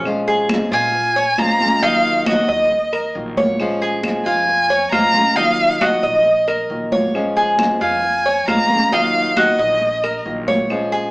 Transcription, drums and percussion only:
0.05 high conga, claves
0.27 high conga
0.49 high conga, claves
0.72 high conga
0.94 high conga
1.16 high conga
1.38 high conga, claves
1.60 high conga
1.82 high conga
2.04 high conga
2.26 high conga, claves
2.71 high conga
2.93 high conga, claves
3.15 high conga
3.37 high conga
3.60 high conga, claves
3.82 high conga
4.03 high conga, claves
4.26 high conga
4.48 high conga
4.70 high conga
4.92 high conga, claves
5.14 high conga
5.37 high conga
5.59 high conga
5.81 high conga, claves
6.03 high conga
6.25 high conga
6.47 high conga, claves
6.70 high conga
6.92 high conga
7.14 high conga, claves
7.36 high conga
7.59 high conga, claves
7.81 high conga
8.03 high conga
8.25 high conga
8.48 high conga, claves
8.70 high conga
8.92 high conga
9.15 high conga
9.37 high conga, claves
9.59 high conga
9.81 high conga
10.04 high conga, claves
10.26 high conga
10.48 high conga
10.70 high conga, claves
10.92 high conga

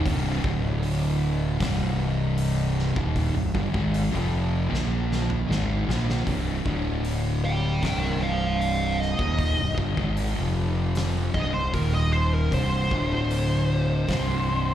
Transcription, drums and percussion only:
0.06 kick, open hi-hat
0.44 kick
0.83 open hi-hat
1.60 kick, snare, open hi-hat
2.38 open hi-hat
2.79 snare
2.96 kick
3.16 kick, open hi-hat
3.55 kick
3.74 kick
3.94 open hi-hat
4.74 snare
5.12 snare
5.30 mid tom
5.51 snare
5.90 snare
6.10 snare
6.27 kick, open hi-hat
6.66 kick
7.05 open hi-hat
7.83 kick, snare, open hi-hat
8.61 open hi-hat
9.02 snare
9.19 kick
9.38 kick, open hi-hat
9.78 kick
9.97 kick
10.17 open hi-hat
10.95 snare, open hi-hat
11.34 kick
11.74 kick, open hi-hat
12.52 kick, open hi-hat
12.91 kick
13.31 open hi-hat
14.08 kick, snare, open hi-hat

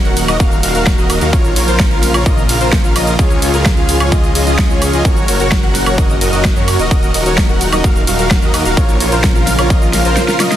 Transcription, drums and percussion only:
0.05 closed hi-hat
0.17 open hi-hat, ride, shaker
0.28 closed hi-hat, high woodblock, shaker
0.40 kick, closed hi-hat, ride, shaker
0.52 closed hi-hat, shaker
0.63 open hi-hat, ride, shaker
0.75 closed hi-hat, shaker
0.86 kick, snare, closed hi-hat, ride, shaker
0.98 closed hi-hat, shaker
1.10 open hi-hat, ride, high woodblock, shaker
1.21 closed hi-hat, shaker
1.33 kick, closed hi-hat, ride, shaker
1.45 closed hi-hat, shaker
1.56 open hi-hat, ride, shaker
1.68 closed hi-hat, shaker
1.79 kick, snare, closed hi-hat, ride, shaker
1.91 closed hi-hat
2.03 snare, open hi-hat, ride, shaker
2.14 closed hi-hat, high woodblock, shaker
2.26 kick, closed hi-hat, ride, shaker
2.38 closed hi-hat, shaker
2.49 open hi-hat, ride, shaker
2.61 closed hi-hat, shaker
2.72 kick, snare, closed hi-hat, ride, shaker
2.84 closed hi-hat, shaker
2.96 open hi-hat, ride, high woodblock, shaker
3.07 closed hi-hat, shaker
3.19 kick, closed hi-hat, ride, shaker
3.31 closed hi-hat, shaker
3.42 open hi-hat, ride, shaker
3.54 closed hi-hat, shaker
3.65 kick, snare, closed hi-hat, ride, shaker
3.77 closed hi-hat
3.89 open hi-hat, ride, shaker
4.00 closed hi-hat, high woodblock, shaker
4.12 kick, closed hi-hat, ride, shaker
4.24 closed hi-hat, shaker
4.35 open hi-hat, ride, shaker
4.47 closed hi-hat, shaker
4.58 kick, snare, closed hi-hat, ride, shaker
4.70 closed hi-hat, shaker
4.82 open hi-hat, ride, high woodblock, shaker
4.93 closed hi-hat, shaker
5.05 kick, closed hi-hat, ride, shaker
5.17 closed hi-hat, shaker
5.28 open hi-hat, ride, shaker
5.40 closed hi-hat, shaker
5.52 kick, snare, closed hi-hat, ride, shaker
5.63 closed hi-hat
5.75 snare, open hi-hat, ride, shaker
5.86 closed hi-hat, high woodblock, shaker
5.98 kick, closed hi-hat, ride, shaker
6.10 closed hi-hat, shaker
6.21 open hi-hat, ride, shaker
6.33 closed hi-hat, shaker
6.45 kick, snare, closed hi-hat, ride, shaker
6.56 closed hi-hat, shaker
6.68 open hi-hat, ride, high woodblock, shaker
6.79 closed hi-hat, shaker
6.91 kick, closed hi-hat, ride, shaker
7.03 closed hi-hat, shaker
7.14 open hi-hat, ride, shaker
7.26 closed hi-hat, shaker
7.38 kick, snare, closed hi-hat, ride, shaker
7.49 closed hi-hat
7.61 open hi-hat, ride, shaker
7.73 closed hi-hat, high woodblock, shaker
7.84 kick, closed hi-hat, ride, shaker
7.96 closed hi-hat, shaker
8.07 open hi-hat, ride, shaker
8.19 closed hi-hat, shaker
8.31 kick, snare, closed hi-hat, ride, shaker
8.42 closed hi-hat, shaker
8.54 open hi-hat, ride, high woodblock, shaker
8.65 closed hi-hat, shaker
8.77 kick, closed hi-hat, ride, shaker
8.89 closed hi-hat, shaker
9.00 open hi-hat, ride, shaker
9.12 closed hi-hat, shaker
9.24 kick, snare, closed hi-hat, shaker
9.35 closed hi-hat, shaker
9.47 snare, open hi-hat, ride, shaker
9.59 closed hi-hat, high woodblock, shaker
9.70 kick, closed hi-hat, ride, shaker
9.82 closed hi-hat, shaker
9.93 snare, open hi-hat, ride, shaker
10.05 closed hi-hat, shaker
10.17 snare, closed hi-hat, ride, shaker
10.28 snare, closed hi-hat, shaker
10.40 snare, open hi-hat, ride, high woodblock, shaker
10.52 snare, closed hi-hat, shaker

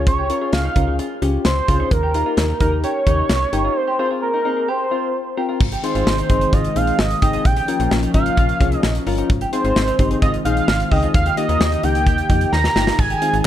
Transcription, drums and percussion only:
0.07 kick, closed hi-hat
0.30 closed hi-hat
0.53 snare, closed hi-hat
0.76 kick, closed hi-hat
0.99 closed hi-hat
1.22 closed hi-hat
1.45 snare, closed hi-hat
1.68 kick, closed hi-hat
1.91 kick, closed hi-hat
2.14 closed hi-hat
2.37 snare, closed hi-hat
2.60 kick, closed hi-hat
2.84 closed hi-hat
3.07 kick, closed hi-hat
3.29 snare, closed hi-hat
3.53 closed hi-hat
5.60 kick, crash
5.72 closed hi-hat
5.84 closed hi-hat
5.95 closed hi-hat
6.07 snare
6.18 closed hi-hat
6.29 kick, closed hi-hat
6.41 closed hi-hat
6.53 kick, closed hi-hat
6.64 closed hi-hat
6.76 closed hi-hat
6.87 closed hi-hat
6.99 snare
7.10 closed hi-hat
7.22 kick, closed hi-hat
7.33 closed hi-hat
7.45 kick, closed hi-hat
7.57 closed hi-hat
7.68 closed hi-hat
7.80 closed hi-hat
7.91 snare
8.03 closed hi-hat
8.14 kick, closed hi-hat
8.26 closed hi-hat
8.37 kick, closed hi-hat
8.49 closed hi-hat
8.61 kick, closed hi-hat
8.72 closed hi-hat
8.83 snare
8.95 closed hi-hat
9.07 open hi-hat
9.18 closed hi-hat
9.30 kick, closed hi-hat
9.41 closed hi-hat
9.53 closed hi-hat
9.65 closed hi-hat
9.76 snare
9.88 closed hi-hat
9.99 kick, closed hi-hat
10.11 closed hi-hat
10.22 kick, closed hi-hat
10.34 closed hi-hat
10.45 closed hi-hat
10.57 closed hi-hat
10.68 snare
10.80 closed hi-hat
10.91 kick, open hi-hat
11.03 closed hi-hat
11.14 kick, closed hi-hat
11.26 closed hi-hat
11.37 closed hi-hat
11.49 closed hi-hat
11.61 snare
11.72 closed hi-hat
11.83 closed hi-hat
11.95 closed hi-hat
12.07 kick, closed hi-hat
12.18 closed hi-hat
12.30 kick, closed hi-hat
12.41 closed hi-hat
12.53 snare
12.64 snare
12.76 snare
12.87 snare
12.99 kick, splash
13.10 closed hi-hat
13.22 closed hi-hat
13.34 closed hi-hat

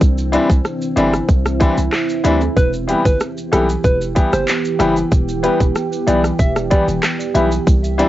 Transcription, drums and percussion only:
0.01 kick, shaker, maracas
0.18 maracas, shaker
0.33 closed hi-hat, shaker
0.50 kick, shaker, maracas
0.65 cross-stick, shaker, maracas
0.82 shaker, maracas
0.97 closed hi-hat, high timbale, shaker, maracas
1.14 cross-stick, shaker, maracas
1.29 kick, shaker, maracas
1.46 cross-stick, shaker, maracas
1.61 kick, closed hi-hat, shaker, maracas
1.78 shaker, maracas
1.93 cross-stick, clap, shaker, maracas
2.09 maracas, shaker
2.24 closed hi-hat, maracas, shaker
2.41 high timbale, maracas, shaker
2.57 kick, shaker, maracas
2.73 maracas, shaker
2.89 closed hi-hat, shaker
3.05 kick, maracas, shaker
3.20 cross-stick, maracas, shaker
3.37 maracas, shaker
3.52 cross-stick, closed hi-hat, maracas, shaker
3.69 maracas, shaker
3.84 kick, maracas, shaker
4.01 shaker, maracas
4.16 kick, closed hi-hat, maracas, shaker
4.33 cross-stick, maracas, shaker
4.48 clap, shaker, maracas
4.65 maracas, shaker
4.80 cross-stick, closed hi-hat, maracas, shaker
4.96 maracas, shaker
5.12 kick, shaker, maracas
5.29 maracas, shaker
5.44 closed hi-hat, shaker
5.60 kick, maracas, shaker
5.75 cross-stick, shaker, maracas
5.92 shaker, maracas
6.08 closed hi-hat, shaker, maracas
6.24 cross-stick, shaker, maracas
6.39 kick, maracas, shaker
6.56 cross-stick, shaker, maracas
6.71 kick, closed hi-hat, maracas, shaker
6.88 shaker, maracas
7.03 cross-stick, clap, shaker, maracas
7.20 shaker, maracas
7.35 closed hi-hat, maracas, shaker
7.52 maracas, shaker
7.67 kick, shaker, maracas
7.84 maracas, shaker
7.99 closed hi-hat, shaker

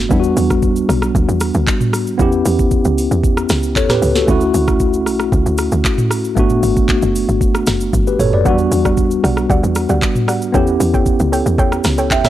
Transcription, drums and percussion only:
0.11 kick, shaker
0.23 shaker
0.37 open hi-hat, shaker
0.50 kick, cross-stick, shaker
0.62 kick, shaker
0.76 shaker
0.89 cross-stick, open hi-hat, shaker
1.02 cross-stick, shaker
1.15 kick, shaker
1.29 shaker
1.40 cross-stick, open hi-hat, shaker
1.54 shaker
1.67 kick, clap, shaker
1.81 mid tom, shaker
1.93 cross-stick, open hi-hat, shaker
2.07 shaker
2.19 kick, shaker
2.32 shaker
2.45 open hi-hat, shaker
2.59 kick, shaker
2.71 kick, shaker
2.85 shaker
2.98 open hi-hat, shaker
3.11 shaker
3.24 kick, shaker
3.37 cross-stick, shaker
3.49 cross-stick, snare, open hi-hat, shaker
3.63 shaker
3.76 kick, clap, shaker
3.89 cross-stick, snare, mid tom, shaker
4.02 open hi-hat, shaker
4.15 snare, shaker
4.28 kick, shaker
4.41 shaker
4.54 open hi-hat, shaker
4.68 kick, cross-stick, shaker
4.80 kick, shaker
4.93 shaker
5.06 cross-stick, open hi-hat, shaker
5.20 cross-stick, shaker
5.32 kick, shaker
5.46 shaker
5.58 cross-stick, open hi-hat, shaker
5.72 shaker
5.85 kick, clap, shaker
5.98 mid tom, shaker
6.11 cross-stick, open hi-hat, shaker
6.24 shaker
6.37 kick, shaker
6.50 mid tom, shaker
6.63 open hi-hat, shaker
6.77 kick, shaker
6.88 kick, clap, shaker
7.02 shaker
7.16 open hi-hat, shaker
7.29 shaker
7.41 kick, shaker
7.55 cross-stick, shaker
7.67 cross-stick, snare, open hi-hat, shaker
7.80 shaker
7.93 kick, high tom, shaker
8.07 shaker
8.19 mid tom, open hi-hat, shaker
8.33 floor tom
8.46 kick, shaker
8.58 shaker
8.72 open hi-hat, shaker
8.85 kick, cross-stick, shaker
8.97 kick, shaker
9.11 shaker
9.24 cross-stick, open hi-hat, shaker
9.37 cross-stick, shaker
9.50 kick, shaker
9.64 shaker
9.75 cross-stick, open hi-hat, shaker
9.89 shaker
10.02 kick, clap, shaker
10.15 mid tom, shaker
10.28 cross-stick, open hi-hat, shaker
10.42 shaker
10.54 kick, shaker
10.67 shaker
10.80 open hi-hat, shaker
10.94 kick, shaker
11.06 kick, shaker
11.20 shaker
11.33 open hi-hat, shaker
11.46 shaker
11.58 kick, shaker
11.72 cross-stick, shaker
11.84 cross-stick, snare, open hi-hat, shaker
11.98 shaker
12.11 kick, clap, shaker
12.24 cross-stick, snare, mid tom, shaker

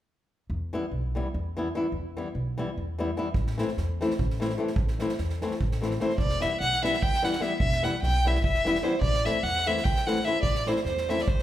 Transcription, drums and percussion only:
3.34 kick
3.46 snare
3.58 snare
3.68 snare
3.77 snare
4.01 snare
4.10 snare
4.19 kick
4.30 snare
4.41 snare
4.49 snare
4.67 snare
4.76 kick
4.87 snare
4.99 snare
5.09 snare
5.18 snare
5.29 snare
5.41 snare
5.51 snare
5.61 kick
5.71 snare
5.82 snare
5.91 snare
6.00 snare
6.10 snare
6.18 kick
6.29 snare
6.41 snare
6.60 snare
6.72 snare
6.84 snare
6.93 snare
7.03 kick
7.14 snare
7.24 snare
7.32 snare
7.42 snare
7.60 kick
7.72 snare
7.84 snare
8.03 snare
8.15 snare
8.26 snare
8.35 snare
8.44 kick
8.54 snare
8.65 snare
8.75 snare
8.84 snare
9.02 kick
9.13 snare
9.25 snare
9.45 snare
9.56 snare
9.68 snare
9.77 snare
9.85 kick
9.96 snare
10.07 snare
10.16 snare
10.25 snare
10.43 kick
10.55 snare
10.66 snare
10.76 snare
10.85 snare
10.97 snare
11.09 snare
11.18 snare
11.28 kick
11.39 snare

